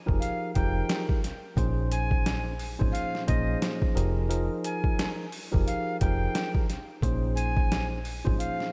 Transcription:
0.06 F1 F3 D#4 G4 G#4 A#4, kick
0.20 F5, closed hi-hat
0.54 F1 F3 D#4 G4 G#4 A#4 G5, kick, closed hi-hat
0.89 snare, closed hi-hat
1.09 kick
1.24 snare, closed hi-hat
1.57 A#1 A#2 F3 C#4 D#4 G#4 C5, kick, closed hi-hat
1.91 G#5, closed hi-hat
2.11 kick
2.26 snare, closed hi-hat
2.59 open hi-hat
2.79 G#1 A#2 F3 C#4 D#4 G#4 C5, kick
2.92 F5, closed hi-hat
3.15 snare
3.27 A#1 A#2 F3 C#4 D#4 G#4 C5 D#5, kick, closed hi-hat
3.62 snare, closed hi-hat
3.82 kick
3.95 F1 F3 D#4 G4 G#4 A#4, closed hi-hat
4.29 F3 D#4 F4 G#4 A#4, closed hi-hat
4.64 G#5, closed hi-hat
4.84 kick
4.99 snare, closed hi-hat
5.32 open hi-hat
5.51 F1 F3 D#4 G4 G#4 A#4, kick
5.66 F5, closed hi-hat
6.00 F1 F3 D#4 G4 G#4 A#4 G5, kick, closed hi-hat
6.35 snare, closed hi-hat
6.55 kick
6.70 snare, closed hi-hat
7.02 A#1 A#2 F3 C#4 D#4 G#4 C5, kick, closed hi-hat
7.35 G#5, closed hi-hat
7.57 kick
7.72 snare, closed hi-hat
8.05 open hi-hat
8.24 G#1 A#2 F3 C#4 D#4 G#4 C5, kick
8.39 F5, closed hi-hat
8.60 snare

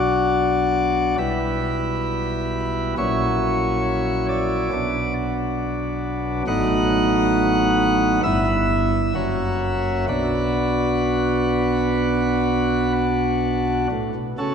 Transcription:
Already playing: B1 B2 F#3 D4 F#4 D5
1.18 B1 B2 G3 E4 B4
2.98 A#1 A#2 F#3 C#4 E4 C#5
4.29 D5
4.73 B1 B2 F#3 B3 D4
6.47 A1 A2 F#3 B3 D#4 F#5
8.23 G1 G2 B3 E4 E5
9.15 F#1 F#2 A#3 C#4 F#4
10.09 B1 B2 B3 D4 F#4 B4
13.92 A2
14.15 B2
14.38 C#3 C#4 F#4 A4

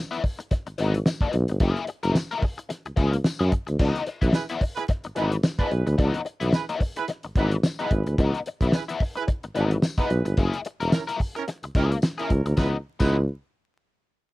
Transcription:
0.11 E3 B3 E4, closed hi-hat
0.23 muted overdriven electric guitar stroke, kick, open hi-hat
0.39 muted overdriven electric guitar stroke, closed hi-hat
0.51 muted overdriven electric guitar stroke, kick, snare, closed hi-hat
0.67 G#1, muted overdriven electric guitar stroke, closed hi-hat
0.78 G#1 E3 B3 D#4, closed hi-hat
0.94 muted overdriven electric guitar stroke, closed hi-hat
1.06 muted overdriven electric guitar stroke, snare, tambourine
1.21 E3 B3 D#4, kick, closed hi-hat
1.33 B1, muted overdriven electric guitar stroke, closed hi-hat
1.48 G1, muted overdriven electric guitar stroke, closed hi-hat
1.60 F#1 A#3 E4 G#4, kick, closed hi-hat
1.76 closed hi-hat
1.87 muted overdriven electric guitar stroke, closed hi-hat
2.03 F#1 A#3 E4 A#4, closed hi-hat
2.15 muted overdriven electric guitar stroke, snare, tambourine
2.31 A#3 E4 A#4, closed hi-hat
2.43 muted overdriven electric guitar stroke, kick, open hi-hat
2.58 muted overdriven electric guitar stroke, closed hi-hat
2.69 muted overdriven electric guitar stroke, snare, closed hi-hat
2.85 C#2, muted overdriven electric guitar stroke, closed hi-hat
2.96 C#2 A#3 E4 G#4, kick, closed hi-hat
3.12 muted overdriven electric guitar stroke, closed hi-hat
3.24 muted overdriven electric guitar stroke, snare, tambourine
3.39 F#2 A#3 E4 G#4, closed hi-hat
3.52 muted overdriven electric guitar stroke, kick, closed hi-hat
3.67 D2, muted overdriven electric guitar stroke, closed hi-hat
3.79 C#2 E3 B3 D#4, kick, crash
3.95 closed hi-hat
4.07 muted overdriven electric guitar stroke, closed hi-hat
4.21 B1 E3 B3 E4, kick, closed hi-hat
4.33 E4 G#4 B4, muted overdriven electric guitar stroke, snare, tambourine
4.49 E3 B3 E4, closed hi-hat
4.61 muted overdriven electric guitar stroke, kick, open hi-hat
4.76 E4 G#4 B4, muted overdriven electric guitar stroke, closed hi-hat
4.88 muted overdriven electric guitar stroke, kick, snare, closed hi-hat
5.04 G#1, muted overdriven electric guitar stroke, closed hi-hat
5.15 G#1 E3 B3 D#4 E4 G#4 B4, closed hi-hat
5.32 muted overdriven electric guitar stroke, closed hi-hat
5.43 muted overdriven electric guitar stroke, snare, tambourine
5.59 E3 B3 D#4 E4 G#4 B4, kick, closed hi-hat
5.71 B1, muted overdriven electric guitar stroke, closed hi-hat
5.87 D2, muted overdriven electric guitar stroke, closed hi-hat
5.98 C#2 E3 B3 D#4, kick, closed hi-hat
6.14 closed hi-hat
6.25 muted overdriven electric guitar stroke, closed hi-hat
6.40 B1 E3 B3 E4, closed hi-hat
6.53 E4 G#4 B4, muted overdriven electric guitar stroke, snare, tambourine
6.69 E3 B3 E4, closed hi-hat
6.81 muted overdriven electric guitar stroke, kick, open hi-hat
6.96 E4 G#4 B4, muted overdriven electric guitar stroke, closed hi-hat
7.08 muted overdriven electric guitar stroke, snare, closed hi-hat
7.23 G#1, muted overdriven electric guitar stroke, closed hi-hat
7.36 G#1 E3 B3 D#4 E4 G#4 B4, kick, closed hi-hat
7.51 muted overdriven electric guitar stroke, closed hi-hat
7.63 muted overdriven electric guitar stroke, snare, tambourine
7.79 E3 B3 D#4 E4 G#4 B4, closed hi-hat
7.91 G#1, muted overdriven electric guitar stroke, kick, closed hi-hat
8.06 D2, muted overdriven electric guitar stroke, closed hi-hat
8.18 C#2 E3 B3 D#4, kick, closed hi-hat
8.34 closed hi-hat
8.46 muted overdriven electric guitar stroke, closed hi-hat
8.61 B1 E3 B3 E4, kick, closed hi-hat
8.72 E4 G#4 B4, muted overdriven electric guitar stroke, snare, tambourine
8.88 E3 B3 E4, closed hi-hat
9.00 muted overdriven electric guitar stroke, kick, open hi-hat
9.15 E4 G#4 B4, muted overdriven electric guitar stroke, closed hi-hat
9.27 muted overdriven electric guitar stroke, kick, closed hi-hat
9.43 G#1, muted overdriven electric guitar stroke, closed hi-hat
9.55 G#1 E3 B3 D#4 E4 G#4 B4, closed hi-hat
9.71 muted overdriven electric guitar stroke, closed hi-hat
9.82 muted overdriven electric guitar stroke, snare, tambourine
9.98 E3 B3 D#4 E4 G#4 B4, kick, closed hi-hat
10.09 B1, muted overdriven electric guitar stroke, closed hi-hat
10.25 G1, muted overdriven electric guitar stroke, closed hi-hat
10.37 F#1 A#3 E4 G#4, kick, closed hi-hat
10.53 closed hi-hat
10.65 muted overdriven electric guitar stroke, closed hi-hat
10.80 E1 A#3 E4 A#4, closed hi-hat
10.92 C#4 E4 A#4, muted overdriven electric guitar stroke, snare, tambourine
11.07 A#3 E4 A#4, closed hi-hat
11.20 muted overdriven electric guitar stroke, kick, open hi-hat
11.35 C#4 E4 A#4, muted overdriven electric guitar stroke, closed hi-hat
11.48 muted overdriven electric guitar stroke, snare, closed hi-hat
11.63 C#2, muted overdriven electric guitar stroke, closed hi-hat
11.75 C#2 A#3 C#4 E4 G#4 A#4, kick, closed hi-hat
11.91 muted overdriven electric guitar stroke, closed hi-hat
12.02 muted overdriven electric guitar stroke, snare, tambourine
12.18 A#3 C#4 E4 G#4 A#4, closed hi-hat
12.30 C#2, muted overdriven electric guitar stroke, kick, closed hi-hat
12.46 D2, muted overdriven electric guitar stroke, closed hi-hat
12.57 C#2 E3 G#3 B3 D#4 E4 B4, kick, snare, tambourine
13.00 C#2 E3 G#3 B3 D#4 E4 B4, kick, crash, tambourine

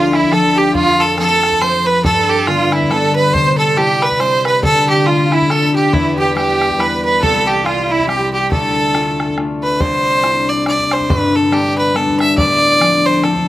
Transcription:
Already playing: D2 F3 A3 C4 D4 F4
0.13 E4, bodhran
0.23 bodhran
0.31 F3 A3 D4 A4, bodhran
0.57 G4
0.74 F2 F4, bodhran
1.00 A4
1.17 F3 A3 C4 A4, bodhran
1.43 bodhran
1.52 bodhran
1.61 F3 A3 C4 C5, bodhran
1.86 B4
2.04 G2 A4, bodhran
2.30 G4
2.47 D3 G3 B3 F4, bodhran
2.72 E4, bodhran
2.82 bodhran
2.90 D3 G3 B3 A4, bodhran
3.15 B4
3.33 C3 C5, bodhran
3.58 A4
3.76 G3 C4 E4 G4, bodhran
4.02 B4, bodhran
4.11 bodhran
4.20 G3 C4 E4 C5, bodhran
4.45 B4, bodhran
4.63 D3 A4, bodhran
4.89 G4
5.06 A3 D4 F4, bodhran
5.32 E4, bodhran
5.41 bodhran
5.50 A3 D4 F4 A4, bodhran
5.75 G4
5.92 E2 E4, bodhran
6.18 G4
6.35 G3 B3 E4 G4, bodhran
6.61 bodhran
6.71 bodhran
6.78 G3 B3 E4 B4, bodhran
7.05 B4
7.22 C2 A4, bodhran
7.47 G4
7.65 G3 C4 E4 F4, bodhran
7.90 E4
8.00 bodhran
8.07 G3 C4 E4 G4, bodhran
8.33 G4
8.51 D2 A4, bodhran
8.94 A3 D4 F4, bodhran
9.20 bodhran
9.29 bodhran
9.37 A3 D4 F4, bodhran
9.63 B4
9.80 C2 C5, bodhran
10.23 C4 D4 E4, bodhran
10.49 D5
10.66 C4 D4 E4 D5, bodhran
10.79 bodhran
10.91 C5, bodhran
11.01 bodhran
11.09 G1 G2 B4, bodhran
11.36 A4
11.51 G3 B3 D4 G4, bodhran
11.78 B4
11.94 G3 B3 D4 A4, bodhran
12.08 bodhran
12.20 E5, bodhran
12.37 D1 D2 D5, bodhran
12.80 F3 C4 D4, bodhran
13.06 C5
13.23 F3 C4 D4 A4, bodhran
13.36 bodhran

